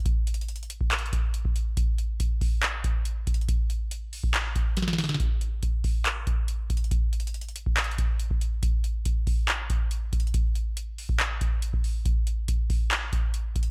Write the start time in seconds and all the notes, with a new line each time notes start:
0.06 kick, closed hi-hat
0.27 closed hi-hat
0.34 closed hi-hat
0.41 closed hi-hat
0.48 closed hi-hat
0.56 closed hi-hat
0.63 closed hi-hat
0.70 closed hi-hat
0.81 kick
0.91 clap, closed hi-hat
0.99 closed hi-hat
1.06 closed hi-hat
1.13 kick, closed hi-hat
1.34 closed hi-hat
1.45 kick
1.56 closed hi-hat
1.77 kick, closed hi-hat
1.98 closed hi-hat
2.20 kick, closed hi-hat
2.41 kick, open hi-hat
2.63 clap, closed hi-hat
2.84 kick, closed hi-hat
3.05 closed hi-hat
3.27 kick, closed hi-hat
3.34 closed hi-hat
3.41 closed hi-hat
3.48 kick, closed hi-hat
3.70 closed hi-hat
3.91 closed hi-hat
4.13 open hi-hat
4.24 kick
4.34 clap, closed hi-hat
4.56 kick, closed hi-hat
4.77 snare, closed hi-hat
4.82 snare
4.88 snare
4.93 snare
4.98 snare, open hi-hat
5.04 snare
5.09 snare
5.14 snare
5.20 kick, closed hi-hat
5.41 closed hi-hat
5.63 kick, closed hi-hat
5.84 kick, open hi-hat
6.05 clap, closed hi-hat
6.27 kick, closed hi-hat
6.48 closed hi-hat
6.70 kick, closed hi-hat
6.77 closed hi-hat
6.84 closed hi-hat
6.91 kick, closed hi-hat
7.13 closed hi-hat
7.20 closed hi-hat
7.27 closed hi-hat
7.34 closed hi-hat
7.41 closed hi-hat
7.49 closed hi-hat
7.56 closed hi-hat
7.66 kick
7.77 clap, closed hi-hat
7.84 closed hi-hat
7.91 closed hi-hat
7.98 kick, closed hi-hat
8.20 closed hi-hat
8.31 kick
8.41 closed hi-hat
8.63 kick, closed hi-hat
8.84 closed hi-hat
9.05 kick, closed hi-hat
9.27 kick, open hi-hat
9.48 clap, closed hi-hat
9.70 kick, closed hi-hat
9.91 closed hi-hat
10.13 kick, closed hi-hat
10.20 closed hi-hat
10.27 closed hi-hat
10.34 kick, closed hi-hat
10.55 closed hi-hat
10.77 closed hi-hat
10.98 open hi-hat
11.09 kick
11.20 clap, closed hi-hat
11.41 kick, closed hi-hat
11.62 closed hi-hat
11.73 kick
11.84 open hi-hat
12.06 kick, closed hi-hat
12.27 closed hi-hat
12.48 kick, closed hi-hat
12.70 kick, open hi-hat
12.91 clap, closed hi-hat
13.13 kick, closed hi-hat
13.34 closed hi-hat
13.56 kick, closed hi-hat
13.63 closed hi-hat